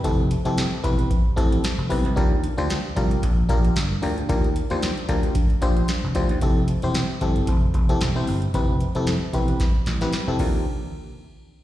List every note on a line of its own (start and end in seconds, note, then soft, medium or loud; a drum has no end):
0.04 0.35 F1 loud
0.04 0.23 C4 medium
0.04 0.23 E4 medium
0.04 0.23 G4 medium
0.04 0.24 A4 medium
0.04 kick loud
0.04 closed hi-hat medium
0.31 closed hi-hat medium
0.45 0.65 F1 medium
0.45 0.63 C4 medium
0.45 0.63 E4 medium
0.45 0.63 G4 medium
0.45 0.63 A4 loud
0.45 closed hi-hat soft
0.58 snare loud
0.58 closed hi-hat loud
0.83 1.03 E1 medium
0.83 1.08 C4 medium
0.83 1.08 E4 medium
0.83 1.08 G4 medium
0.83 1.08 B4 medium
0.83 kick loud
0.83 closed hi-hat medium
0.99 closed hi-hat medium
1.10 kick loud
1.10 closed hi-hat loud
1.36 1.56 A1 medium
1.36 1.61 C4 medium
1.36 1.61 E4 medium
1.36 1.61 G4 medium
1.36 1.62 A4 loud
1.36 kick medium
1.36 closed hi-hat medium
1.52 closed hi-hat medium
1.64 snare loud
1.64 closed hi-hat medium
1.78 1.87 F1 loud
1.89 2.01 B1 medium
1.89 2.03 C4 medium
1.89 2.03 E4 medium
1.89 2.04 G4 medium
1.89 2.04 B4 medium
1.89 kick medium
1.89 open hi-hat medium
2.05 2.14 C2 medium
2.05 closed hi-hat soft
2.16 2.47 D#2 loud
2.16 2.36 D4 medium
2.16 2.36 F4 medium
2.16 2.36 G4 medium
2.16 2.36 A#4 medium
2.16 kick loud
2.16 closed hi-hat medium
2.44 closed hi-hat medium
2.58 2.78 D2 medium
2.58 2.75 D4 medium
2.58 2.75 F4 medium
2.58 2.75 G4 medium
2.58 2.75 C5 loud
2.58 closed hi-hat soft
2.70 snare loud
2.70 closed hi-hat medium
2.96 3.16 C2 medium
2.96 3.21 D4 medium
2.96 3.21 F4 medium
2.96 3.21 G4 medium
2.96 3.21 A#4 medium
2.96 kick loud
2.96 closed hi-hat medium
3.11 closed hi-hat medium
3.23 3.42 A#1 medium
3.23 kick loud
3.23 closed hi-hat loud
3.49 3.69 A#1 loud
3.49 3.74 D4 medium
3.49 3.74 F4 medium
3.49 3.74 G4 medium
3.49 3.74 A#4 loud
3.49 kick loud
3.49 closed hi-hat medium
3.65 closed hi-hat medium
3.76 3.96 G1 medium
3.76 snare loud
3.76 closed hi-hat medium
4.02 4.22 D2 medium
4.02 4.16 D4 medium
4.02 4.16 F4 medium
4.02 4.16 G4 medium
4.02 4.16 A#4 medium
4.02 open hi-hat medium
4.18 closed hi-hat soft
4.29 4.60 D#2 loud
4.29 4.48 D4 medium
4.29 4.48 F4 medium
4.29 4.48 G4 medium
4.29 4.48 A#4 medium
4.29 kick loud
4.29 closed hi-hat medium
4.44 closed hi-hat soft
4.56 closed hi-hat medium
4.70 4.90 D#2 loud
4.70 4.88 D4 medium
4.70 4.88 F4 medium
4.70 4.88 G4 medium
4.70 4.88 C5 medium
4.70 closed hi-hat soft
4.82 snare loud
4.82 closed hi-hat loud
4.97 closed hi-hat soft
5.08 5.28 D2 medium
5.08 5.33 D4 medium
5.08 5.33 F4 medium
5.08 5.33 G4 medium
5.08 5.34 A#4 medium
5.08 kick loud
5.08 closed hi-hat medium
5.23 closed hi-hat medium
5.35 kick loud
5.35 closed hi-hat loud
5.50 closed hi-hat soft
5.62 5.81 A#1 loud
5.62 5.86 D4 medium
5.62 5.86 F4 medium
5.62 5.87 G4 medium
5.62 5.87 C5 loud
5.62 kick medium
5.62 closed hi-hat medium
5.77 closed hi-hat medium
5.88 snare loud
5.88 closed hi-hat medium
6.04 6.12 F1 medium
6.15 6.26 D2 medium
6.15 6.29 D4 medium
6.15 6.29 F4 medium
6.15 6.29 G4 medium
6.15 6.29 C5 medium
6.15 kick medium
6.15 closed hi-hat medium
6.29 6.39 D#2 medium
6.29 closed hi-hat medium
6.41 6.72 F1 loud
6.41 6.61 C4 medium
6.41 6.61 E4 medium
6.41 6.61 G4 medium
6.41 6.61 A4 medium
6.41 kick loud
6.41 closed hi-hat medium
6.68 closed hi-hat medium
6.82 7.03 E1 medium
6.82 7.00 C4 medium
6.82 7.00 E4 medium
6.82 7.00 G4 medium
6.82 7.01 C5 loud
6.82 closed hi-hat soft
6.94 snare loud
6.94 closed hi-hat loud
7.21 7.41 G1 medium
7.21 7.52 C4 medium
7.21 7.52 E4 medium
7.21 7.52 G4 medium
7.21 7.52 A4 medium
7.21 kick loud
7.21 closed hi-hat medium
7.36 closed hi-hat medium
7.47 7.67 F1 medium
7.47 kick loud
7.47 closed hi-hat medium
7.74 7.94 F1 medium
7.74 kick loud
7.74 closed hi-hat medium
7.89 8.00 C4 medium
7.89 8.00 E4 medium
7.89 8.00 G4 medium
7.89 8.00 A4 loud
7.89 closed hi-hat medium
8.01 8.21 E1 medium
8.01 snare loud
8.01 closed hi-hat medium
8.16 8.33 C4 medium
8.16 8.33 E4 medium
8.16 8.33 G4 medium
8.16 8.33 C5 medium
8.27 8.47 G1 medium
8.27 open hi-hat medium
8.42 closed hi-hat soft
8.54 8.85 F1 loud
8.54 8.73 C4 medium
8.54 8.73 E4 medium
8.54 8.73 G4 medium
8.54 8.74 B4 medium
8.54 kick loud
8.54 closed hi-hat medium
8.80 closed hi-hat medium
8.95 9.15 F1 medium
8.95 9.12 C4 medium
8.95 9.13 E4 medium
8.95 9.13 G4 medium
8.95 9.13 A4 loud
8.95 closed hi-hat soft
9.07 snare loud
9.07 closed hi-hat loud
9.33 9.53 E1 medium
9.33 9.64 C4 medium
9.33 9.64 E4 medium
9.33 9.64 G4 medium
9.33 9.65 B4 medium
9.33 kick loud
9.33 closed hi-hat medium
9.48 closed hi-hat medium
9.60 kick loud
9.60 snare medium
9.60 closed hi-hat medium
9.86 10.06 A1 medium
9.86 snare medium
9.86 closed hi-hat medium
10.01 10.12 C4 medium
10.01 10.12 E4 medium
10.01 10.12 G4 medium
10.01 10.12 B4 loud
10.01 snare medium
10.01 closed hi-hat medium
10.13 snare medium
10.13 closed hi-hat medium
10.27 10.36 F1 medium
10.27 10.39 C4 medium
10.27 10.40 E4 medium
10.27 10.39 G4 medium
10.27 10.40 A4 loud
10.39 10.64 D#2 loud
10.39 10.64 D4 medium
10.39 10.64 F4 medium
10.39 10.64 G4 medium
10.39 10.64 A#4 medium
10.39 kick loud
10.39 crash medium